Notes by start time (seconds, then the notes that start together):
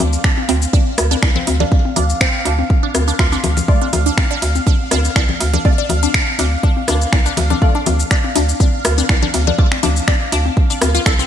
Already playing: F5
0.00 D2, open hi-hat, high tom, low conga, shaker
0.13 shaker
0.24 D4, finger snap, kick
0.37 high tom
0.49 D2 C4, open hi-hat
0.62 shaker
0.73 D4, kick, high tom, shaker
0.98 D2, cross-stick, open hi-hat, shaker
1.11 D4, high tom, shaker
1.23 C2, finger snap, kick
1.36 C4, low conga
1.47 D2, open hi-hat, high tom
1.60 D4, low conga
1.72 kick
1.85 high tom
1.96 D2 D4, open hi-hat, low conga, shaker
2.10 shaker
2.21 C4, finger snap, kick, high tom
2.45 D2 D4, open hi-hat
2.59 high tom
2.70 kick
2.83 D4
2.95 D2, cross-stick, open hi-hat, high tom, shaker
3.08 D4, shaker
3.19 D2 F4, finger snap, kick
3.32 D4, high tom, shaker
3.44 D2, open hi-hat, low conga
3.57 low conga, shaker
3.68 A3 F4 D5, kick
3.81 D4, high tom
3.93 D2, open hi-hat, ride, low conga, shaker
4.06 D4, shaker
4.18 finger snap, kick, high tom
4.31 D4
4.42 D2, open hi-hat, ride
4.55 high tom, shaker
4.67 D4, kick, shaker
4.91 D2 D4, cross-stick, open hi-hat, high tom, ride, shaker
5.05 shaker
5.16 C2 D4, finger snap, kick
5.29 high tom, low conga
5.40 D2, open hi-hat, ride
5.54 D4, low conga
5.65 A3 F4 D5, kick, high tom
5.78 D4
5.89 D2, open hi-hat, ride, low conga
6.03 D4, high tom, shaker
6.14 finger snap, kick
6.39 D2 D4, open hi-hat, high tom, ride
6.63 D4, kick
6.77 high tom
6.88 D2 D4, cross-stick, open hi-hat, ride, shaker
7.01 shaker
7.12 C2, finger snap, kick, high tom
7.26 D4, shaker
7.37 D2, open hi-hat, ride, low conga
7.50 D4, high tom, low conga
7.62 A3 F4 D5, kick
7.75 D4
7.86 D2, open hi-hat, high tom, ride, low conga, shaker
8.00 shaker
8.11 D4, finger snap, kick
8.24 high tom
8.36 D2 D4, open hi-hat, ride
8.49 shaker
8.60 D4, kick, high tom, shaker
8.85 D2, cross-stick, open hi-hat, ride, shaker
8.98 D4, high tom, shaker
9.09 C2, finger snap, kick
9.22 D4, low conga
9.34 D2, open hi-hat, high tom, ride
9.47 D4, low conga
9.59 A3 F4 D5, kick
9.72 finger snap, high tom
9.83 D2 D4, open hi-hat, ride, low conga, shaker
9.96 shaker
10.08 D4, finger snap, kick, high tom
10.32 D2 D4, open hi-hat, ride
10.46 high tom
10.57 kick
10.70 D4, shaker
10.81 D2, cross-stick, open hi-hat, high tom, ride, shaker
10.95 F4, shaker
11.06 C2 A4, finger snap, kick
11.19 C4, high tom, shaker